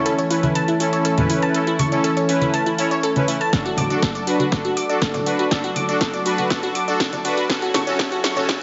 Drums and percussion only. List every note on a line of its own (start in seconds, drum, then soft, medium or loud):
0.06 closed hi-hat medium
0.18 closed hi-hat soft
0.31 open hi-hat loud
0.43 closed hi-hat soft
0.43 high conga medium
0.55 closed hi-hat medium
0.68 closed hi-hat soft
0.80 open hi-hat loud
0.93 closed hi-hat soft
1.05 closed hi-hat medium
1.18 closed hi-hat soft
1.18 high conga loud
1.18 low conga loud
1.30 open hi-hat loud
1.42 closed hi-hat soft
1.54 closed hi-hat medium
1.67 closed hi-hat soft
1.79 open hi-hat loud
1.79 high conga medium
1.92 closed hi-hat soft
2.04 closed hi-hat medium
2.17 closed hi-hat soft
2.29 open hi-hat loud
2.41 closed hi-hat soft
2.41 high conga medium
2.54 closed hi-hat medium
2.66 closed hi-hat soft
2.79 open hi-hat loud
2.91 closed hi-hat soft
3.03 closed hi-hat medium
3.16 closed hi-hat soft
3.16 high conga medium
3.28 open hi-hat loud
3.41 closed hi-hat soft
3.53 kick loud
3.53 snare soft
3.53 closed hi-hat medium
3.66 closed hi-hat soft
3.77 open hi-hat loud
3.77 high conga medium
3.77 low conga medium
3.90 closed hi-hat soft
4.02 kick loud
4.02 snare medium
4.02 closed hi-hat medium
4.15 closed hi-hat soft
4.27 open hi-hat loud
4.39 closed hi-hat soft
4.39 high conga medium
4.52 kick loud
4.52 snare medium
4.52 closed hi-hat medium
4.65 closed hi-hat soft
4.77 open hi-hat loud
4.90 closed hi-hat soft
5.02 kick loud
5.02 snare medium
5.02 closed hi-hat medium
5.14 closed hi-hat soft
5.14 high conga medium
5.14 low conga medium
5.26 open hi-hat loud
5.39 closed hi-hat soft
5.51 kick loud
5.51 snare medium
5.51 closed hi-hat medium
5.64 closed hi-hat soft
5.76 open hi-hat loud
5.76 high conga medium
5.89 closed hi-hat soft
6.01 kick loud
6.01 snare medium
6.01 closed hi-hat medium
6.14 closed hi-hat soft
6.26 open hi-hat loud
6.38 closed hi-hat soft
6.38 high conga medium
6.50 kick loud
6.50 snare medium
6.50 closed hi-hat medium
6.63 closed hi-hat soft
6.75 open hi-hat loud
6.88 closed hi-hat soft
7.00 kick loud
7.00 snare medium
7.00 closed hi-hat medium
7.13 closed hi-hat soft
7.13 high conga medium
7.25 open hi-hat loud
7.38 closed hi-hat soft
7.50 kick loud
7.50 snare medium
7.50 closed hi-hat medium
7.62 closed hi-hat soft
7.74 snare medium
7.74 open hi-hat loud
7.74 high conga medium
7.74 low conga medium
7.87 closed hi-hat soft
7.99 kick loud
7.99 snare medium
7.99 closed hi-hat loud
8.12 closed hi-hat soft
8.24 snare medium
8.24 open hi-hat loud
8.36 closed hi-hat soft
8.36 high conga medium
8.49 kick loud
8.49 snare medium
8.49 closed hi-hat loud